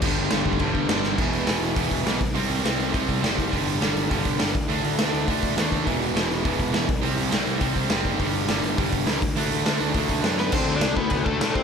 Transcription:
<<
  \new Staff \with { instrumentName = "Overdriven electric guitar" } { \time 4/4 \key g \major \tempo 4 = 206 r1 | r1 | r1 | r1 |
r1 | r1 | r1 | r1 |
r2. r8 <b b'>8 | <c' c''>8. <d' d''>8. <b b'>4 <a a'>4 <c' c''>8 | }
  \new Staff \with { instrumentName = "Distorted electric guitar" } { \time 4/4 \key g \major <g, d g>1 | r1 | r1 | r1 |
r1 | r1 | r1 | r1 |
r1 | <d a d'>4 <d a d'>4 <d a d'>4 <d a d'>4 | }
  \new Staff \with { instrumentName = "Distorted electric guitar" } { \clef bass \time 4/4 \key g \major <g, d g>4 <g, d g>4 <g, d g>4 <g, d g>4 | <e, b, e>4 <e, b, e>4 <e, b, e>4 <e, b, e>8 r8 | <c g c'>4 <c g c'>4 <c g c'>4 <c g c'>4 | <g, d g>4 <g, d g>4 <g, d g>4 <g, d g>8 r8 |
<d a d'>4 <d a d'>4 <d a d'>4 <d a d'>4 | <e, b, e>4 <e, b, e>4 <e, b, e>4 <e, b, e>8 r8 | <c g c'>4 <c g c'>4 <c g c'>4 <c g c'>4 | <g, d g>4 <g, d g>4 <g, d g>4 <g, d g>8 r8 |
<d a d'>4 <d a d'>4 <d a d'>4 <d a d'>4 | r1 | }
  \new Staff \with { instrumentName = "Overdriven electric guitar" } { \clef bass \time 4/4 \key g \major <g, d g>4 <g, d g>4 <g, d g>4 <g, d g>4 | <e, b, e>4 <e, b, e>4 <e, b, e>4 <e, b, e>8 r8 | <c g c'>4 <c g c'>4 <c g c'>4 <c g c'>4 | <g, d g>4 <g, d g>4 <g, d g>4 <g, d g>8 r8 |
<d a d'>4 <d a d'>4 <d a d'>4 <d a d'>4 | <e, b, e>4 <e, b, e>4 <e, b, e>4 <e, b, e>8 r8 | <c g c'>4 <c g c'>4 <c g c'>4 <c g c'>4 | <g, d g>4 <g, d g>4 <g, d g>4 <g, d g>8 r8 |
<d a d'>4 <d a d'>4 <d a d'>4 <d a d'>4 | <d a d'>2~ <d a d'>8 <d a d'>8 <d a d'>4 | }
  \new Staff \with { instrumentName = "Picked electric bass" } { \clef bass \time 4/4 \key g \major g,,8 g,,8 g,,8 g,,8 g,,8 g,,8 g,,4 | e,,4 e,,8 e,,8 e,,8 e,,8 b,,8 c,8 | c,8 c,8 c,8 c,8 c,8 c,8 fis,,4 | g,,4 g,,8 g,,8 g,,8 g,,8 g,,8 d,8 |
d,8 d,8 d,8 d,8 d,8 d,8 ees,4 | e,,4 e,,8 e,,8 e,,8 e,,8 e,,8 c,8 | c,8 c,8 c,8 c,8 c,8 c,8 fis,,4 | g,,4 g,,8 g,,8 g,,8 g,,8 cis,8 d,8 |
d,8 d,8 d,8 d,8 d,8 d,8 fis,4 | d,8 d,8 c,8 d,8 d,8 d,8 a,8 c8 | }
  \new DrumStaff \with { instrumentName = "Drums" } \drummode { \time 4/4 <cymc bd>4 <cymc sn>8 bd16 bd16 <cymc bd>8 bd8 <cymc sn>8 sn8 | <cymc bd>8 hho8 <hho sn>8 hho8 <hho bd>8 <hho bd>8 <hho sn>8 <hho bd>8 | hho8 hho8 <hho sn>8 hho8 <hho bd>8 <hho bd>8 <hho sn>8 <hho bd>8 | <hho bd>8 hho8 <hho sn>8 hho8 <hho bd>8 <hho bd>8 <hho sn>8 <hho bd>8 |
hho8 hho8 <hho sn>8 hho8 <hho bd>8 <hho bd>8 <hho sn>8 <hho bd>8 | <hho bd>8 hho8 <hho sn>8 hho8 <hho bd>8 <hho bd>8 <hho sn>8 <hho bd>8 | hho8 hho8 <hho sn>8 hho8 <hho bd>8 <hho bd>8 <hho sn>8 <hho bd>8 | <hho bd>8 hho8 <hho sn>8 hho8 <hho bd>8 <hho bd>8 <hho sn>8 <hho bd>8 |
hho8 hho8 <hho sn>8 hho8 <hho bd>8 <hho bd>8 <hho sn>8 sn8 | <cymc bd>4 <cymc sn>8 bd8 <cymc bd>8 bd8 <cymc sn>8 bd8 | }
>>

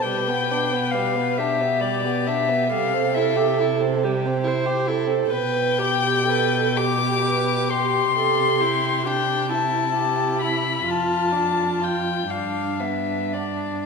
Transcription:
<<
  \new Staff \with { instrumentName = "Violin" } { \time 6/8 \key c \major \tempo 4. = 44 g''4 f''8 e''8 d''8 e''8 | f''8 e''8 r2 | g''4. d'''4 c'''8~ | c'''4 g''8 a''4 b''8 |
a''4 g''8 f''8 e''8 d''8 | }
  \new Staff \with { instrumentName = "Viola" } { \time 6/8 \key c \major b'4. g'4. | a'4. g'8 c''8 a'8 | b'8 g'8 a'8 g'4. | a'8 g'8 d'8 e'4. |
f'4. d'4. | }
  \new Staff \with { instrumentName = "Violin" } { \time 6/8 \key c \major g16 b16 d'16 b16 g16 b16 d'16 b16 g16 b16 d'16 b16 | g16 c'16 e'16 g'16 e'16 c'16 g16 c'16 e'16 g'16 e'16 c'16 | b'8 g'8 b'8 g'8 b'8 g'8 | g'8 e'8 g'8 e'8 g'8 e'8 |
f'8 d'8 f'8 d'8 b8 d'8 | }
  \new Staff \with { instrumentName = "Cello" } { \clef bass \time 6/8 \key c \major b,2. | c2. | b,2. | c2. |
f,4. g,4. | }
>>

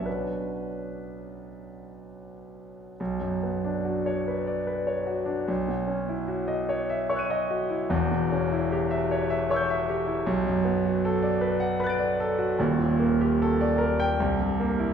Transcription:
\new Staff \with { instrumentName = "Grand piano" } { \time 3/4 \key b \minor \tempo 4 = 74 << { b'2 r4 | r2. | r2 <cis''' e''' fis''' dis''''>4 | r2 <cis''' e''' g'''>4 |
r2 <b'' fis''' a''' d''''>4 | \key ees \lydian r2. | } \\ { <b,, b cis' d'>2. | b,,16 fis,16 b16 d'16 fis'16 cis''16 b'16 d''16 b'16 cis''16 fis'16 d'16 | b,,16 b,16 cis'16 e'16 fis'16 dis''16 cis''16 e''16 cis''16 dis''16 fis'16 e'16 | <e,, e,>16 b,16 cis'16 e'16 g'16 e''16 cis''16 e''16 cis''16 e''16 g'16 e'16 |
b,,16 fis,16 b16 fis'16 a'16 d''16 b'16 fis''16 b'16 d''16 a'16 fis'16 | <ees,, ees,>16 bes,16 bes16 g'16 a'16 d''16 bes'16 g''16 c,16 g,16 bes16 e'16 | } >> }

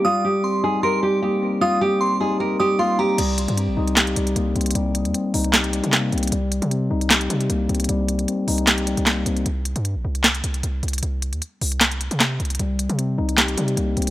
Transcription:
<<
  \new Staff \with { instrumentName = "Synth bell" } { \time 4/4 \key c \minor \tempo 4 = 153 ees'''4 c'''4 c'''4 r4 | ees'''4 c'''4. ees'''8 c'''8 bes''8 | r1 | r1 |
r1 | r1 | r1 | r1 |
r1 | }
  \new Staff \with { instrumentName = "Nylon-string guitar" } { \time 4/4 \key c \minor f'8 g'4 aes'8 bes'8 g'8 g'4 | f'8 g'4 aes'8 bes'8 g'8 f'8 g'8 | r1 | r1 |
r1 | r1 | r1 | r1 |
r1 | }
  \new Staff \with { instrumentName = "Tine electric piano" } { \time 4/4 \key c \minor g4 c'8 ees'8 g'8 g8 bes8 c'8 | g4 c'8 ees'8 g'8 g8 bes8 c'8 | g4 c'8 ees'8 g'8 g8 bes8 c'8 | g4 c'8 ees'8 g'8 g8 bes8 c'8 |
g4 c'8 ees'8 g'8 g8 bes8 c'8 | g4 c'8 ees'8 g'8 g8 bes8 c'8 | r1 | r1 |
g4 c'8 ees'8 g'8 g8 bes8 c'8 | }
  \new Staff \with { instrumentName = "808-style bass" } { \clef bass \time 4/4 \key c \minor r1 | r1 | c,8. g,8 bes,,16 c,4 c,8 c,8 c,8 | c,8. ees,16 r8 c,4~ c,16 c8. c,8 |
c,8. c8. c,4 c8 c,8 c,8 | c,4 r8 c,4~ c,16 c,8. c,8 | c,8. g,8 bes,,16 c,4 c,8 c,8 c,8 | c,8. ees,16 r8 c,4~ c,16 c8. c,8 |
c,8. c8. c,4 c8 c,8 c,8 | }
  \new DrumStaff \with { instrumentName = "Drums" } \drummode { \time 4/4 r4 r4 r4 r4 | r4 r4 r4 r4 | <cymc hh>8 hh16 hh16 hh8. hh16 <hc hh sn>16 hh16 hh16 hh16 hh8 hh32 hh32 hh32 hh32 | hh8 hh16 hh16 hh8 hho16 hh16 <hc hh sn>16 hh16 hh16 hh16 <hc hh sn>8 hh32 hh32 hh32 hh32 |
hh8 hh16 hh16 hh8. hh16 <hc hh sn>16 hh16 hh16 hh16 hh8 hh32 hh32 hh32 hh32 | hh8 hh16 hh16 hh8 hho16 hh16 <hc hh sn>16 hh16 hh16 hh16 <hc hh sn>8 hh16 hh16 | hh8 hh16 hh16 hh8. hh16 <hc hh sn>16 hh16 hh16 hh16 hh8 hh32 hh32 hh32 hh32 | hh8 hh16 hh16 hh8 hho16 hh16 <hc hh sn>16 hh16 hh16 hh16 <hc hh sn>8 hh32 hh32 hh32 hh32 |
hh8 hh16 hh16 hh8. hh16 <hc hh sn>16 hh16 hh16 hh16 hh8 hh32 hh32 hh16 | }
>>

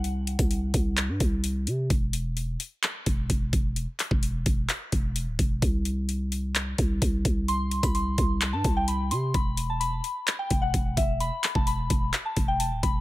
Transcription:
<<
  \new Staff \with { instrumentName = "Synth bell" } { \time 4/4 \key c \lydian \tempo 4 = 129 r1 | r1 | r1 | r1 |
c'''8. b''16 c'''4~ c'''16 a''8 g''16 b''8 c'''8 | b''8. a''16 b''4~ b''16 g''8 fis''8. e''8 | b''8. a''16 b''4~ b''16 a''8 g''16 a''8 b''8 | }
  \new Staff \with { instrumentName = "808-style bass" } { \clef bass \time 4/4 \key c \lydian c,8. c,8. c,8. g,16 c,4 c8 | e,,4. r4 e,,8 e,,8 e,,8~ | e,,16 r8 e,,8. e,,8 r8 e,,8. d,,16 e,,8 | c,2~ c,8 c,8 c,8 c,8~ |
c,8. c,8. c,8. g,16 c,4 c8 | e,,4. r4 e,,8 e,,8 e,,8~ | e,,16 r8 e,,8. e,,8 r8 e,,8. d,,16 e,,8 | }
  \new DrumStaff \with { instrumentName = "Drums" } \drummode { \time 4/4 hh8 <hh hho>16 <hh bd>16 hh8 <hh bd>8 <hc hh>8 <hh bd>8 hh8 hh8 | <hh bd>8 hh8 hh8 hh8 <hc hh>8 <hh bd>8 <hh bd>8 <hh bd>8 | hh8 <hc hh>16 bd16 hh8 <hh bd>8 <hc hh>8 <hh bd>8 hh8 <hh bd>8 | <hh bd>8 hh8 hh8 hh8 <hc hh>8 <hh bd>8 <hh bd>8 <hh bd>8 |
hh8 <hh hho>16 <hh bd>16 hh8 <hh bd>8 <hc hh>8 <hh bd>8 hh8 hh8 | <hh bd>8 hh8 hh8 hh8 <hc hh>8 <hh bd>8 <hh bd>8 <hh bd>8 | hh8 <hc hh>16 bd16 hh8 <hh bd>8 <hc hh>8 <hh bd>8 hh8 <hh bd>8 | }
>>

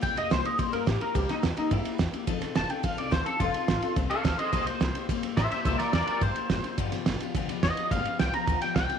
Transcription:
<<
  \new Staff \with { instrumentName = "Clean electric guitar" } { \time 4/4 \key c \mixolydian \tempo 4 = 213 g''8 ees''8 c''8 ees''8 c''8 bes'8 g'8 bes'8 | g'8 ees'8 r8 ees'8 e'4 r4 | r4 a''8 g''8 f''8 d''8 c''8 a'8 | f'2 r8 <a' f''>8 <a' f''>8 <c'' ees''>8 |
<c'' ees''>8 c''2 r8 <c'' e''>8 <c'' e''>8 | <c'' e''>8 <bes' d''>8 <bes' d''>8 <bes' d''>8 c''2 | r2. ees''4 | f''4 g''8 bes''4 g''8 g''4 | }
  \new Staff \with { instrumentName = "Steel-string acoustic guitar" } { \time 4/4 \key c \mixolydian <c g bes e' g'>8 <bes e' g'>8 <g bes e' g'>8 <bes e' g'>8 <c g bes e' g'>8 <bes e' g'>8 <bes e' g'>8 <bes e' g'>8 | <c g bes e' g'>8 <bes e' g'>8 <g bes e' g'>8 <bes e' g'>8 <c g bes e' g'>8 <bes e' g'>8 <g bes e' g'>8 <bes e' g'>8 | <f c' ees' a'>8 <c' ees' a'>8 <f c' ees' a'>8 <c' ees' a'>8 <f c' ees' a'>8 <c' ees' a'>8 <f c' ees' a'>8 <c' ees' a'>8 | <f c' ees' a'>8 <c' ees' a'>8 <f c' ees' a'>8 <c' ees' a'>8 <f c' ees' a'>8 <c' ees' a'>8 <f c' ees' a'>8 <c' ees' a'>8 |
<c g bes e' g'>8 <bes e' g'>8 <g bes e' g'>8 <bes e' g'>8 <c g bes e' g'>8 <bes e' g'>8 <g bes e' g'>8 <bes e' g'>8 | <c g bes e' g'>8 <bes e' g'>8 <g g'>8 <bes e' g'>8 <c g bes e' g'>8 <bes e' g'>8 <g bes e' g'>8 <bes e' g'>8 | <g, d f b f' g'>8 <f b f' g'>8 <f b f' g'>8 <f b f' g'>8 <g, d f b f' g'>8 <f b f' g'>8 <f b g'>8 <f b f' g'>8 | <g, d f b f' g'>8 <f b f' g'>8 <f b f' g'>8 <f b f' g'>8 <g, d f b f' g'>8 <f b f' g'>8 <f f' g'>8 <f b f' g'>8 | }
  \new Staff \with { instrumentName = "Upright bass" } { \clef bass \time 4/4 \key c \mixolydian c,8 f,8 c,8 r8 f,8 g,8 a,8 r8 | c,8 r8 e,8 r8 g,8 r8 e,8 r8 | f,,8 bes,,8 f,,8 r8 bes,,8 c,8 d,8 r8 | f,,8 r8 a,,8 r8 c,8 r8 d,8 r8 |
c,8 f,8 c,8 r8 f,8 g,8 a,8 r8 | c,8 r8 e,8 r8 g,8 r8 fis,,8 r8 | g,,8 c,8 g,,8 r8 c,8 d,8 e,8 r8 | g,,8 r8 b,,8 r8 d,8 r8 b,,8 r8 | }
  \new DrumStaff \with { instrumentName = "Drums" } \drummode { \time 4/4 <bd cymr>8 cymr8 <cymr sn>8 cymr8 <bd cymr>8 cymr8 <bd cymr sn>8 cymr8 | <bd cymr>8 <cymr sn>8 <cymr sn>8 cymr8 <bd cymr>8 cymr8 <bd cymr sn>8 cymr8 | <bd cymr>8 <cymr sn>8 <cymr sn>8 cymr8 <bd cymr>8 cymr8 <bd cymr sn>8 cymr8 | <bd cymr>8 cymr8 <cymr sn>8 cymr8 <bd cymr>8 cymr8 <bd cymr sn>8 cymr8 |
<bd cymr>8 cymr8 <cymr sn>8 cymr8 <bd cymr>8 cymr8 <bd cymr sn>8 cymr8 | <bd cymr>8 <cymr sn>8 <cymr sn>8 cymr8 <bd cymr>8 cymr8 <bd cymr sn>8 cymr8 | <bd cymr>8 <cymr sn>8 <cymr sn>8 cymr8 <bd cymr>8 cymr8 <bd cymr sn>8 cymr8 | <bd cymr>8 cymr8 <cymr sn>8 cymr8 <bd cymr>8 cymr8 <bd cymr sn>8 cymr8 | }
>>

